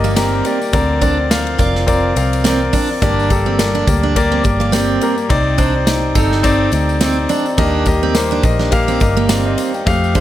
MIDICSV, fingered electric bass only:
0, 0, Header, 1, 2, 480
1, 0, Start_track
1, 0, Tempo, 570885
1, 618, Time_signature, 4, 2, 24, 8
1, 8579, End_track
2, 0, Start_track
2, 0, Title_t, "Fingered electric bass"
2, 0, Program_c, 0, 33
2, 0, Note_on_c, 0, 31, 88
2, 345, Note_off_c, 0, 31, 0
2, 616, Note_on_c, 0, 38, 106
2, 1304, Note_off_c, 0, 38, 0
2, 1340, Note_on_c, 0, 29, 85
2, 1786, Note_off_c, 0, 29, 0
2, 1818, Note_on_c, 0, 36, 79
2, 2265, Note_off_c, 0, 36, 0
2, 2539, Note_on_c, 0, 31, 106
2, 3225, Note_off_c, 0, 31, 0
2, 3259, Note_on_c, 0, 38, 86
2, 3705, Note_off_c, 0, 38, 0
2, 3740, Note_on_c, 0, 31, 83
2, 4186, Note_off_c, 0, 31, 0
2, 4459, Note_on_c, 0, 36, 114
2, 5144, Note_off_c, 0, 36, 0
2, 5174, Note_on_c, 0, 31, 85
2, 5622, Note_off_c, 0, 31, 0
2, 5652, Note_on_c, 0, 38, 82
2, 6101, Note_off_c, 0, 38, 0
2, 6373, Note_on_c, 0, 39, 109
2, 7061, Note_off_c, 0, 39, 0
2, 7094, Note_on_c, 0, 34, 95
2, 7542, Note_off_c, 0, 34, 0
2, 7576, Note_on_c, 0, 31, 94
2, 8022, Note_off_c, 0, 31, 0
2, 8297, Note_on_c, 0, 41, 111
2, 8579, Note_off_c, 0, 41, 0
2, 8579, End_track
0, 0, End_of_file